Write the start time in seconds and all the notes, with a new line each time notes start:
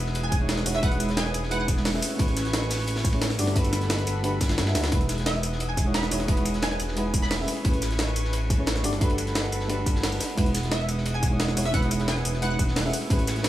Already playing: E1 G#3 D#4 E4 F#4 G#4 B4 F#5 D#6
0.06 snare
0.15 closed hi-hat, ride
0.23 G#5
0.32 kick, closed hi-hat, ride, tambourine
0.39 G#3 D#4 E4 F#4 C#5
0.49 snare, closed hi-hat, ride
0.58 snare
0.65 E1 G#3 D#4 E4 F#4 C#5, open hi-hat, ride, tambourine
0.75 E5, snare
0.81 E1 G#3 D#4 E4 F#4 F#5, kick, closed hi-hat, ride
0.85 B4
0.91 closed hi-hat, ride
1.00 closed hi-hat, ride, tambourine
1.09 snare, closed hi-hat
1.17 G#5, snare, closed hi-hat, ride
1.26 snare
1.34 E1, closed hi-hat, ride, tambourine
1.43 snare
1.50 G#3 D#4 E4 F#4 B4 F#5, closed hi-hat, ride
1.60 F#5
1.68 E1, kick, closed hi-hat, ride, tambourine
1.77 snare
1.85 snare, closed hi-hat, open hi-hat
1.93 A3 C#4 E4 G#4 E5, snare
2.02 B4 G#5 C#6, open hi-hat, ride, tambourine
2.10 ride
2.17 A1 A3 C#4 E4 G#4, kick, closed hi-hat, ride
2.22 B4
2.28 closed hi-hat
2.36 snare, closed hi-hat, ride, tambourine
2.45 snare, closed hi-hat
2.53 snare, closed hi-hat, ride
2.62 snare
2.70 snare, closed hi-hat, open hi-hat, tambourine
2.79 snare
2.88 closed hi-hat, ride
2.96 snare, open hi-hat
3.04 kick, snare, closed hi-hat, tambourine
3.12 A3 C#4 E4 G#4 C#5, ride
3.21 snare, closed hi-hat, open hi-hat
3.30 snare
3.38 G1 A3 D4 F#4 G4 A4 D5 F#5 B5, open hi-hat, ride, tambourine
3.47 snare
3.54 G1 A3 D4 F#4 G4, kick, closed hi-hat, ride
3.58 B4
3.64 closed hi-hat, ride, tambourine
3.73 snare, closed hi-hat, ride, tambourine
3.81 snare, closed hi-hat
3.90 snare, closed hi-hat, ride
3.98 snare, closed hi-hat
4.07 G1, closed hi-hat, ride, tambourine
4.23 A3 D4 F#4 G4 B4, closed hi-hat, ride
4.41 G1, kick, snare, closed hi-hat, ride, tambourine
4.49 snare, closed hi-hat, ride
4.58 G2, snare, closed hi-hat, ride
4.66 A3 D4 F#4 G4 E5, snare, ride
4.75 D2, snare, open hi-hat, ride, tambourine
4.83 snare, ride
4.90 E1 G#3 D#4 E4 F#4 G#4 F#5 D#6, kick, closed hi-hat, ride
4.94 B4
5.01 closed hi-hat
5.09 snare, closed hi-hat, ride, tambourine
5.18 snare, closed hi-hat
5.26 E5, snare, closed hi-hat, ride
5.35 snare
5.43 closed hi-hat, ride, tambourine
5.52 snare
5.60 closed hi-hat, ride
5.69 G#5
5.77 kick, closed hi-hat, ride, tambourine
5.85 G#3 D#4 E4 F#4 C#5
5.94 B5, snare, closed hi-hat, ride
6.03 snare
6.10 E1 G#3 D#4 E4 F#4 C#5, open hi-hat, ride, tambourine
6.20 snare
6.26 E1 G#3 D#4 E4 F#4, kick, closed hi-hat, ride
6.31 B4
6.37 closed hi-hat, ride
6.45 closed hi-hat, ride, tambourine
6.54 snare, closed hi-hat
6.62 G#5, snare, closed hi-hat, ride
6.71 G#5, snare
6.80 E1, closed hi-hat, ride, tambourine
6.88 snare
6.95 G#3 D#4 E4 F#4 B4, closed hi-hat, ride
7.14 E1, kick, closed hi-hat, ride, tambourine
7.22 B5, snare
7.30 snare, closed hi-hat, open hi-hat
7.38 A3 C#4 E4 G#4 E5, snare
7.48 B4 G#5 C#6, open hi-hat, ride, tambourine
7.56 ride
7.63 A1 A3 C#4 E4 G#4, kick, closed hi-hat, ride
7.67 B4
7.74 closed hi-hat
7.82 snare, closed hi-hat, ride, tambourine
7.91 snare, closed hi-hat
7.99 snare, closed hi-hat, ride
8.07 snare
8.16 closed hi-hat, ride, tambourine
8.25 snare
8.33 closed hi-hat, ride
8.50 kick, closed hi-hat, ride, tambourine
8.58 A3 C#4 E4 G#4 C#5
8.66 snare, closed hi-hat, ride
8.76 snare
8.83 G1 A3 D4 F#4 G4 A4 D5 F#5 B5, open hi-hat, ride, tambourine
8.93 snare
8.99 G1 A3 D4 F#4 G4, kick, closed hi-hat, ride
9.03 B4
9.10 closed hi-hat, ride
9.18 closed hi-hat, ride, tambourine
9.27 snare, closed hi-hat
9.35 snare, closed hi-hat, ride
9.44 snare
9.52 G1, closed hi-hat, ride, tambourine
9.60 snare
9.68 A3 D4 F#4 G4 B4, closed hi-hat, ride
9.86 G1, kick, closed hi-hat, ride, tambourine
9.96 snare
10.03 snare, closed hi-hat, open hi-hat
10.12 snare, tambourine
10.20 snare, open hi-hat, ride, tambourine
10.30 ride
10.35 E1 G#3 D#4 E4 F#4 G#4 F#5 D#6, kick, closed hi-hat, ride
10.40 B4
10.46 closed hi-hat
10.54 snare, closed hi-hat, ride, tambourine
10.63 snare, closed hi-hat
10.71 E5, snare, closed hi-hat, ride
10.80 snare
10.89 closed hi-hat, ride, tambourine
10.98 snare
11.06 closed hi-hat, ride
11.14 G#5
11.23 kick, closed hi-hat, ride, tambourine
11.30 G#3 D#4 E4 F#4 C#5
11.40 snare, closed hi-hat, ride
11.48 snare
11.56 E1 G#3 D#4 E4 F#4 C#5, open hi-hat, ride, tambourine
11.65 E5, snare
11.72 E1 G#3 D#4 E4 F#4 F#5, kick, closed hi-hat, ride
11.76 B4
11.82 closed hi-hat, ride
11.91 closed hi-hat, ride, tambourine
11.99 snare, closed hi-hat
12.08 G#5, snare, closed hi-hat, ride
12.17 snare
12.25 E1, closed hi-hat, ride, tambourine
12.33 snare
12.41 G#3 D#4 E4 F#4 B4 F#5, closed hi-hat, ride
12.50 F#5
12.59 E1, kick, closed hi-hat, ride, tambourine
12.68 snare
12.76 snare, closed hi-hat, open hi-hat
12.84 A3 C#4 E4 G#4 E5, snare
12.93 B4 G#5 C#6, open hi-hat, ride, tambourine
13.02 ride
13.08 A1 A3 C#4 E4 G#4, kick, closed hi-hat, ride
13.13 B4
13.19 closed hi-hat
13.27 snare, closed hi-hat, ride, tambourine
13.36 snare, closed hi-hat
13.43 snare, closed hi-hat, ride